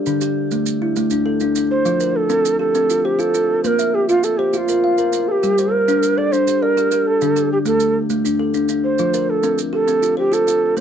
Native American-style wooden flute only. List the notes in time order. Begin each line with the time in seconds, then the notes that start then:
1.71 C5
2.16 A4
2.60 A4
3.05 G4
3.20 A4
3.64 A#4 C5
3.94 G4
4.09 F4
4.24 A4
4.38 G4
4.53 F4 G4
5.28 G4 A4
5.73 A#4
6.18 D5
6.32 C5
6.62 A#4
7.07 A4
7.52 G4
7.67 A4
8.84 C5
9.30 A4
9.74 A4
10.19 G4
10.33 A4